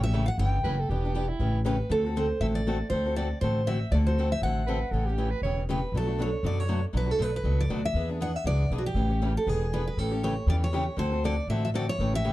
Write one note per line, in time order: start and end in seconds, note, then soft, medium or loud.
0.00 0.28 A1 medium
0.00 0.13 G4 soft
0.00 0.26 E5 medium
0.05 0.13 A3 soft
0.05 0.13 C#4 soft
0.13 0.24 C#3 medium
0.13 0.24 E3 medium
0.13 0.24 A3 medium
0.13 0.24 C#4 medium
0.13 0.24 G4 medium
0.26 0.29 F5 medium
0.26 0.39 F#5 medium
0.38 0.60 G1 medium
0.38 0.57 C#3 medium
0.38 0.57 E3 medium
0.38 0.57 A3 medium
0.38 0.58 C#4 medium
0.38 0.58 G4 medium
0.38 1.11 G5 medium
0.64 0.86 F#1 medium
0.64 0.74 C#3 medium
0.64 0.75 E3 medium
0.64 0.75 A3 medium
0.64 0.75 C#4 medium
0.64 0.75 G4 medium
0.64 0.81 B4 medium
0.80 0.91 A4 medium
0.89 1.30 E1 medium
0.89 1.03 E3 soft
0.89 1.04 B3 medium
0.89 1.04 D4 medium
0.89 1.30 G4 medium
0.89 1.03 G4 medium
1.05 1.13 B3 soft
1.05 1.14 D4 soft
1.05 1.14 G4 soft
1.15 1.25 E3 medium
1.15 1.25 B3 medium
1.15 1.25 D4 medium
1.15 1.25 G4 medium
1.29 1.60 E4 medium
1.39 1.80 A1 medium
1.39 1.58 C#3 medium
1.39 1.58 E3 medium
1.39 1.58 A3 soft
1.39 1.59 C#4 medium
1.39 1.58 G4 medium
1.65 1.75 C#3 medium
1.65 1.75 E3 medium
1.65 1.75 A3 medium
1.65 1.75 C#4 medium
1.65 1.75 G4 medium
1.65 1.92 B4 medium
1.89 2.30 D2 medium
1.89 2.03 D3 medium
1.89 2.03 A3 medium
1.89 2.04 C4 medium
1.89 2.04 F#4 medium
1.89 2.03 A4 soft
1.89 2.17 A4 medium
2.04 2.15 C4 soft
2.04 2.16 F#4 soft
2.04 2.15 A4 soft
2.16 2.26 D3 medium
2.16 2.26 A3 medium
2.16 2.26 C4 medium
2.16 2.26 F#4 medium
2.16 2.26 A4 medium
2.16 2.40 C5 medium
2.40 2.81 A1 medium
2.40 2.59 D3 soft
2.40 2.59 A3 medium
2.40 2.59 C4 medium
2.40 2.60 F#4 medium
2.40 2.59 A4 medium
2.40 2.46 E5 medium
2.55 2.89 D5 medium
2.67 2.76 D3 medium
2.67 2.76 A3 medium
2.67 2.77 C4 medium
2.67 2.77 F#4 medium
2.67 2.77 A4 medium
2.90 3.31 D2 medium
2.90 3.05 D3 soft
2.90 3.05 A3 medium
2.90 3.05 C4 soft
2.90 3.05 F#4 soft
2.90 3.05 A4 medium
2.90 3.14 C5 medium
3.06 3.16 C4 soft
3.06 3.16 F#4 soft
3.06 3.16 A4 soft
3.16 3.27 D3 medium
3.16 3.27 A3 medium
3.16 3.27 C4 medium
3.16 3.27 F#4 medium
3.16 3.27 A4 medium
3.16 3.40 D5 medium
3.41 3.82 A1 medium
3.41 3.60 D3 soft
3.41 3.60 A3 medium
3.41 3.60 C4 medium
3.41 3.60 F#4 medium
3.41 3.60 A4 medium
3.41 3.67 C5 medium
3.67 3.77 D3 medium
3.67 3.77 A3 medium
3.67 3.77 C4 medium
3.67 3.77 F#4 medium
3.67 3.77 A4 medium
3.67 3.93 E5 medium
3.91 4.32 D2 medium
3.91 4.06 D3 soft
3.91 4.06 A3 soft
3.91 4.06 C4 medium
3.91 4.06 F#4 medium
3.91 4.06 A4 medium
3.91 3.97 D5 medium
4.07 4.18 C4 soft
4.07 4.18 F#4 soft
4.07 4.17 A4 soft
4.07 4.31 C5 medium
4.18 4.28 D3 medium
4.18 4.28 A3 medium
4.18 4.28 C4 medium
4.18 4.28 F#4 medium
4.18 4.28 A4 medium
4.32 4.43 E5 medium
4.41 4.82 A1 medium
4.41 4.61 D3 medium
4.41 4.62 A3 medium
4.41 4.62 C4 medium
4.41 4.62 F#4 medium
4.41 4.62 A4 medium
4.41 5.14 F#5 medium
4.67 4.78 D3 medium
4.67 4.78 A3 medium
4.67 4.78 C4 medium
4.67 4.78 F#4 medium
4.67 4.78 A4 medium
4.67 4.93 B4 medium
4.91 5.32 A1 medium
4.91 5.06 C#3 soft
4.91 5.07 E3 soft
4.91 5.07 A3 soft
4.91 5.07 C#4 medium
4.91 5.06 G4 medium
4.91 5.07 A4 medium
5.05 5.32 G4 medium
5.05 5.17 G4 soft
5.09 5.17 A3 soft
5.09 5.17 C#4 soft
5.18 5.28 C#3 medium
5.18 5.28 E3 medium
5.18 5.28 A3 medium
5.18 5.28 C#4 medium
5.18 5.28 G4 medium
5.30 5.42 B4 medium
5.42 5.83 E1 medium
5.42 5.61 C#3 medium
5.42 5.62 E3 medium
5.42 5.62 A3 medium
5.42 5.62 C#4 medium
5.42 5.62 G4 medium
5.42 5.61 C#5 medium
5.69 5.79 C#3 medium
5.69 5.79 E3 medium
5.69 5.79 A3 medium
5.69 5.79 C#4 medium
5.69 5.79 G4 medium
5.69 5.95 B4 medium
5.92 6.33 B1 medium
5.92 6.07 B2 soft
5.92 6.08 F#3 soft
5.92 6.07 A3 soft
5.92 6.07 D4 soft
5.92 6.06 F#4 medium
5.97 6.21 A4 medium
6.07 6.18 A3 soft
6.07 6.18 D4 soft
6.07 6.18 F#4 soft
6.19 6.29 B2 medium
6.19 6.29 F#3 medium
6.19 6.29 A3 medium
6.19 6.29 D4 medium
6.19 6.29 F#4 medium
6.19 6.46 C#5 medium
6.43 6.84 F#2 medium
6.43 6.62 B2 medium
6.43 6.62 F#3 soft
6.43 6.62 A3 medium
6.43 6.62 D4 medium
6.43 6.62 F#4 medium
6.43 6.60 D5 medium
6.60 6.84 C#5 medium
6.68 6.79 B2 medium
6.68 6.79 F#3 medium
6.68 6.79 A3 medium
6.68 6.79 D4 medium
6.68 6.79 F#4 medium
6.93 7.14 B1 medium
6.93 7.07 B2 soft
6.93 7.07 F#3 medium
6.93 7.07 A3 soft
6.93 7.06 D4 soft
6.93 7.05 F#4 medium
6.97 7.11 B4 medium
7.06 7.17 A3 soft
7.06 7.18 D4 soft
7.06 7.18 F#4 soft
7.11 7.22 A4 medium
7.18 7.40 B1 medium
7.18 7.29 B2 medium
7.18 7.29 F#3 medium
7.18 7.29 A3 medium
7.18 7.29 D4 medium
7.18 7.30 F#4 medium
7.18 7.35 B4 medium
7.36 7.61 B4 medium
7.44 7.66 C#2 medium
7.44 7.62 B2 medium
7.44 7.63 F#3 medium
7.44 7.63 A3 medium
7.44 7.63 D4 medium
7.44 7.63 F#4 medium
7.61 7.85 D5 medium
7.70 7.91 D2 medium
7.70 7.80 B2 medium
7.70 7.80 F#3 medium
7.70 7.80 A3 medium
7.70 7.80 D4 medium
7.70 7.80 F#4 medium
7.85 8.08 E5 medium
7.94 8.35 E2 medium
7.94 8.09 E3 soft
7.94 8.09 B3 medium
7.94 8.09 D4 medium
7.94 8.08 G#4 medium
8.09 8.19 B3 soft
8.09 8.20 D4 soft
8.09 8.20 G#4 soft
8.21 8.31 E3 medium
8.21 8.31 B3 medium
8.21 8.31 D4 medium
8.21 8.31 G#4 medium
8.21 8.36 F#5 medium
8.36 8.46 E5 medium
8.44 8.66 C#2 medium
8.44 8.64 E3 medium
8.44 8.64 B3 soft
8.44 8.64 D4 medium
8.44 8.64 G#4 medium
8.44 8.70 D5 medium
8.70 8.92 B1 medium
8.70 8.81 E3 medium
8.70 8.81 B3 medium
8.70 8.82 D4 medium
8.70 8.82 G#4 medium
8.78 8.86 F#4 medium
8.86 9.37 G4 medium
8.94 9.36 A1 medium
8.94 9.09 C#3 soft
8.94 9.10 E3 soft
8.94 9.10 A3 soft
8.94 9.10 C#4 medium
8.94 9.08 G4 medium
9.10 9.21 A3 soft
9.10 9.21 C#4 soft
9.10 9.21 G4 soft
9.22 9.32 C#3 medium
9.22 9.32 E3 medium
9.22 9.32 A3 medium
9.22 9.32 C#4 medium
9.22 9.32 G4 medium
9.37 9.49 A4 medium
9.47 9.87 E1 medium
9.47 9.65 E3 soft
9.47 9.65 B3 medium
9.47 9.65 D4 medium
9.47 9.65 G#4 medium
9.47 9.87 G#4 medium
9.73 9.83 E3 medium
9.73 9.83 B3 medium
9.73 9.83 D4 medium
9.73 9.83 G#4 medium
9.73 9.86 B4 medium
9.87 9.99 B4 medium
9.97 10.38 A1 medium
9.97 10.11 C#3 soft
9.97 10.11 E3 soft
9.97 10.11 A3 medium
9.97 10.11 C#4 medium
9.97 10.10 G4 medium
9.97 10.24 A4 medium
10.11 10.22 A3 soft
10.11 10.23 C#4 soft
10.11 10.22 G4 soft
10.23 10.33 C#3 medium
10.23 10.33 E3 medium
10.23 10.33 A3 medium
10.23 10.33 C#4 medium
10.23 10.33 G4 medium
10.23 10.49 C#5 medium
10.46 10.87 E2 medium
10.46 10.65 C#3 medium
10.46 10.66 E3 medium
10.46 10.66 A3 medium
10.46 10.66 C#4 medium
10.46 10.66 G4 medium
10.46 10.55 D5 medium
10.64 10.99 C#5 medium
10.73 10.83 C#3 medium
10.73 10.83 E3 medium
10.73 10.83 A3 medium
10.73 10.83 C#4 medium
10.73 10.84 G4 medium
10.97 11.38 D2 medium
10.97 11.11 D3 medium
10.97 11.11 A3 medium
10.97 11.12 C4 medium
10.97 11.12 F#4 medium
10.97 11.10 A4 medium
10.97 11.22 C5 medium
11.12 11.24 C4 soft
11.12 11.23 F#4 soft
11.12 11.23 A4 medium
11.24 11.34 D3 medium
11.24 11.34 A3 medium
11.24 11.34 C4 medium
11.24 11.34 F#4 medium
11.24 11.34 A4 medium
11.24 11.49 D5 medium
11.47 11.88 A1 medium
11.47 11.67 D3 medium
11.47 11.68 A3 medium
11.47 11.68 C4 medium
11.47 11.68 F#4 medium
11.47 11.68 A4 medium
11.47 11.64 E5 medium
11.65 11.69 E5 medium
11.74 11.84 D3 medium
11.74 11.84 A3 medium
11.74 11.85 C4 medium
11.74 11.85 F#4 medium
11.74 11.85 A4 medium
11.74 11.88 D5 medium
11.89 12.12 C#5 medium
11.99 12.33 A1 medium
11.99 12.13 C#3 medium
11.99 12.13 E3 medium
11.99 12.13 A3 medium
11.99 12.14 C#4 medium
11.99 12.12 G4 medium
12.14 12.24 A3 soft
12.14 12.24 C#4 soft
12.14 12.24 G4 medium
12.14 12.33 E5 medium
12.24 12.33 C#3 medium
12.24 12.33 E3 medium
12.24 12.33 A3 medium
12.24 12.33 C#4 medium
12.24 12.33 G4 medium